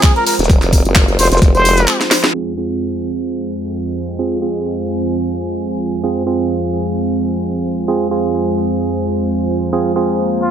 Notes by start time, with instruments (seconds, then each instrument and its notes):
Already playing: analog synth pad F3 G#3 C4, ambient pad F4 C5 A#5
0.03 muted trumpet G#4, kick, snare, clap, closed hi-hat, tambourine, shaker
0.16 muted trumpet A#4, closed hi-hat
0.27 muted trumpet A#4, snare, open hi-hat, tambourine, shaker
0.33 snare, shaker
0.39 wobble bass D#1, snare, closed hi-hat, tambourine, shaker
0.44 snare, shaker
0.50 kick, closed hi-hat, tambourine, shaker
0.62 wobble bass F1, snare, clap, closed hi-hat, tambourine
0.73 kick, open hi-hat, tambourine, shaker
0.85 wobble bass F#1, closed hi-hat, tambourine
0.95 kick, snare, clap, closed hi-hat, tambourine, shaker
1.08 closed hi-hat, tambourine
1.18 wobble bass F1, muted trumpet C5, snare, open hi-hat, tambourine, shaker
1.25 snare, shaker
1.32 wobble bass F1, muted trumpet C5, snare, closed hi-hat, tambourine, shaker
1.37 snare, shaker
1.42 wobble bass F1, kick, snare, closed hi-hat, tambourine, shaker
1.55 muted trumpet C5, closed hi-hat, tambourine
1.65 open hi-hat, tambourine, shaker
1.77 snare, closed hi-hat, tambourine, shaker
1.88 clap, closed hi-hat, tambourine
2.01 snare, closed hi-hat, tambourine, shaker
2.11 snare, open hi-hat, tambourine, shaker
2.24 snare, closed hi-hat, tambourine
2.34 analog synth pad F2 F3 G#3 C4, synth stab C4 F4 G#4, ambient pad F4
2.57 synth stab C4 F4 G#4, ambient pad C5
2.88 ambient pad G#5
4.19 synth stab C4 F4 G#4
4.42 synth stab C4 F4 G#4
6.04 synth stab C4 F4 G#4
6.27 synth stab C4 F4 G#4
7.88 synth stab C4 F4 G#4
8.11 synth stab C4 F4 G#4
9.32 ambient pad A#5
9.73 analog synth pad A#3, synth stab C4 F4 G#4
9.96 synth stab C4 F4 G#4
10.42 muted trumpet F4